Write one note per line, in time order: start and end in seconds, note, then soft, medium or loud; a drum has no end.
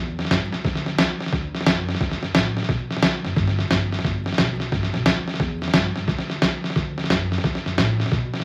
0.00 0.22 E2 medium
0.19 snare soft
0.25 snare soft
0.31 0.47 G2 medium
0.31 kick medium
0.31 snare loud
0.31 hi-hat pedal medium
0.52 0.62 C2 medium
0.52 snare soft
0.64 0.90 D2 loud
0.64 kick loud
0.64 snare soft
0.75 snare soft
0.86 snare soft
0.98 1.24 D2 medium
0.98 kick medium
0.98 snare loud
0.98 hi-hat pedal medium
1.20 snare soft
1.26 snare soft
1.33 1.58 D2 medium
1.33 kick loud
1.33 snare soft
1.55 snare soft
1.61 snare soft
1.66 1.92 F#2 medium
1.66 kick medium
1.66 snare loud
1.66 hi-hat pedal medium
1.89 snare soft
1.95 snare soft
2.01 2.17 D2 loud
2.01 kick loud
2.01 snare soft
2.11 snare soft
2.22 2.31 F#2 medium
2.22 snare soft
2.35 2.60 A2 medium
2.35 kick medium
2.35 snare loud
2.35 hi-hat pedal medium
2.57 snare soft
2.63 snare soft
2.69 2.94 B2 medium
2.69 kick loud
2.69 snare soft
2.91 snare soft
2.97 snare soft
3.02 3.19 D3 medium
3.02 kick medium
3.02 snare loud
3.02 hi-hat pedal medium
3.24 3.33 F#1 medium
3.24 snare soft
3.36 3.62 G1 loud
3.36 kick loud
3.36 snare soft
3.47 snare soft
3.59 snare soft
3.71 3.96 G1 medium
3.71 kick medium
3.71 snare loud
3.71 hi-hat pedal medium
3.92 snare soft
3.99 snare soft
4.04 4.30 G1 medium
4.04 kick loud
4.04 snare soft
4.26 snare soft
4.33 snare soft
4.38 4.63 B1 medium
4.38 kick medium
4.38 snare loud
4.38 hi-hat pedal medium
4.60 snare soft
4.72 4.89 G1 medium
4.72 kick loud
4.72 snare soft
4.83 snare soft
4.93 5.03 B1 medium
4.93 snare soft
5.06 5.31 D2 loud
5.06 kick medium
5.06 snare loud
5.06 hi-hat pedal medium
5.28 snare soft
5.34 snare soft
5.40 5.65 E2 loud
5.40 kick loud
5.40 snare soft
5.62 snare soft
5.68 snare soft
5.74 5.90 G2 medium
5.74 kick medium
5.74 snare loud
5.74 hi-hat pedal medium
5.96 6.05 G2 medium
5.96 snare soft
6.08 6.33 D2 loud
6.08 kick loud
6.08 snare soft
6.19 snare soft
6.30 snare soft
6.42 6.67 D2 medium
6.42 kick medium
6.42 snare loud
6.42 hi-hat pedal medium
6.64 snare soft
6.70 snare soft
6.76 7.01 D2 medium
6.76 kick loud
6.76 snare soft
6.98 snare soft
7.04 snare soft
7.10 7.35 F#2 medium
7.10 kick medium
7.10 snare loud
7.10 hi-hat pedal medium
7.32 snare soft
7.38 snare soft
7.44 7.60 D2 loud
7.44 kick loud
7.44 snare soft
7.55 snare soft
7.66 7.75 F#2 medium
7.66 snare soft
7.78 8.03 A2 medium
7.78 kick medium
7.78 snare loud
7.78 hi-hat pedal medium
8.00 snare soft
8.06 snare soft
8.12 8.37 B2 medium
8.12 kick loud
8.12 snare soft
8.34 snare soft
8.40 snare soft